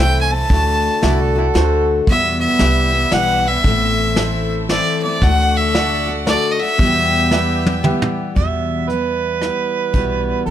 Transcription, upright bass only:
Already playing: C2
0.50 D2
1.03 C2
1.55 D2
2.07 E2
2.60 C2
3.12 B1
3.64 A1
5.22 D2
6.79 E2
8.37 E2
9.94 B1
10.47 C2

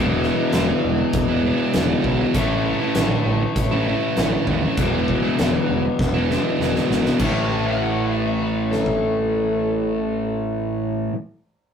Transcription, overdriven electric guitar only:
Already playing: E2 B2 E3
2.35 A2 E3 A3
4.78 E2 B2 E3
7.19 A2 E3
7.23 A3

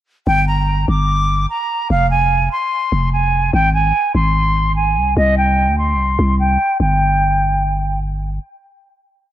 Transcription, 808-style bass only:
0.27 G1
0.88 G1
1.90 F1
2.92 F1
3.53 G#1
4.15 G#1
4.96 C2
5.17 C2
5.68 D2
5.93 C2
6.19 C2
6.80 G1

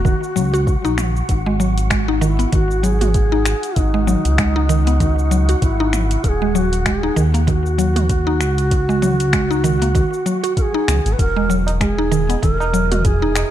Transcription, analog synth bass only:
Already playing: E1
0.36 C#2
0.85 A#1
1.29 G#1
2.53 G#1
3.77 G#1
4.25 C#2
5.62 G#1
6.24 D#1
7.17 D#2
8.41 C#2
10.88 C#2
11.06 G#1
11.19 E1
12.43 E1

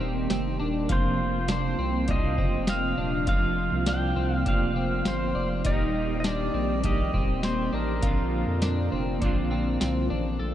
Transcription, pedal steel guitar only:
0.92 C5
1.52 C5
2.11 D#5
2.70 F5
3.29 F5
3.89 G5
4.36 F5
4.48 F5
5.07 C5
5.66 D#5
6.20 D#5
6.27 D5
6.85 D#5
7.45 C5
7.74 A#4

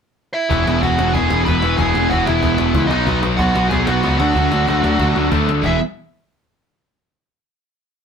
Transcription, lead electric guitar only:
0.34 E4 E5
0.83 F#4 F#5
1.13 G#4 G#5
1.45 B4 B5
1.77 G#4 G#5
2.10 F#4 F#5
2.25 E4 E5
2.87 D#4 D#5
3.37 F#4 F#5
3.69 G#4 G#5
3.85 F#4 F#5
4.17 F#4 F#5
5.66 E5

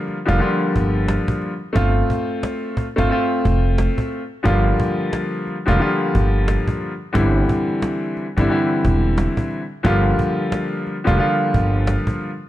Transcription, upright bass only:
0.29 F1
0.76 G1
1.76 G1
2.98 G1
3.45 F1
4.45 G1
5.68 F1
6.15 G1
7.15 G1
8.38 G1
8.85 E1
9.85 G1
11.07 F1
11.54 G1

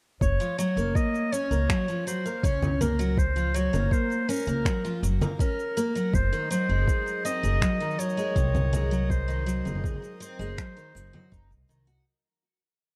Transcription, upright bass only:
0.21 F#1
0.76 F#1
1.51 C#2
2.43 C#2
3.73 F#1
4.47 C#2
5.03 F#1
6.13 F#1
6.69 F#1
7.43 F#1
8.36 C2
9.65 F#1
10.39 F#1
10.95 F#1
11.32 F#1
11.51 C2
11.69 C2

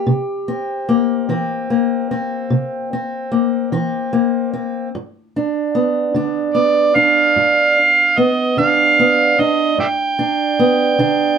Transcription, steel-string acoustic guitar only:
Already playing: G4
0.07 C3
0.48 C4
0.89 A#3
1.29 E3 C4
1.70 A#3
2.11 C4
2.50 C3
2.93 C4
3.32 A#3
3.72 E3 C4
4.13 A#3
4.54 C4
4.95 G2
5.36 D4
5.75 B3
6.14 D3 D4
6.55 B3
6.96 D4
7.36 G2
8.18 B3
8.57 D3 D4
8.99 B3
9.39 D4
9.78 G2
10.19 D4
10.59 B3
10.99 D3 D4

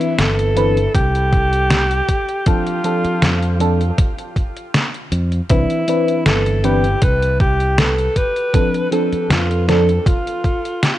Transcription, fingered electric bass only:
0.19 G1
0.95 C2
3.04 muted fingered electric bass stroke
3.22 F2
5.12 F2
5.50 C2
6.26 G1
7.02 C2
9.12 muted fingered electric bass stroke
9.30 F2

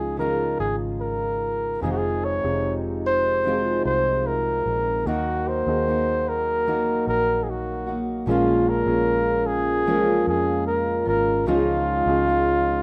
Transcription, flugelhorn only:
Already playing: G#4
0.19 A#4
0.60 G#4
1.01 A#4
1.82 G#4
1.92 F#4
1.97 G#4
2.24 C#5
3.06 C5
3.85 C5
4.27 A#4
5.07 F#4
5.48 C5
6.29 A#4
7.08 A#4
7.44 G#4
7.50 F#4
8.29 F4
8.69 A#4
9.46 G#4
10.28 G#4
10.67 A#4
11.09 A#4
11.48 F4

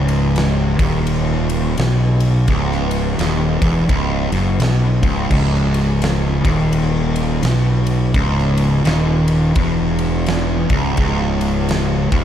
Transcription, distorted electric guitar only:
Already playing: C#2
0.79 D#2
1.78 B2
2.49 C#2
3.18 D#2
3.61 E2
3.90 C#2
4.32 F#2
4.60 B2
5.03 C#2
5.30 C#2
6.44 D#2
7.44 B2
8.14 C#2
8.85 D#2
9.57 E2
10.71 C#2
10.98 C#2
12.12 D#2

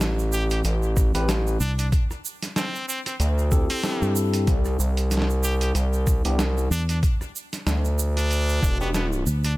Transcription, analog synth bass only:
Already playing: A1
0.65 A1
1.15 A1
3.20 D2
4.48 C2
4.79 C2
5.75 C2
6.25 C2
7.67 D2
8.63 E1

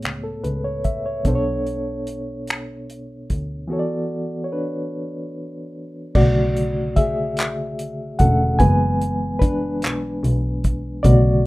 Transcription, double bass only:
0.03 C#2
0.44 C#2
1.25 B1
3.30 D2
6.15 B1
8.20 E1
8.60 F#1
9.83 B1
10.23 B1
11.05 B1

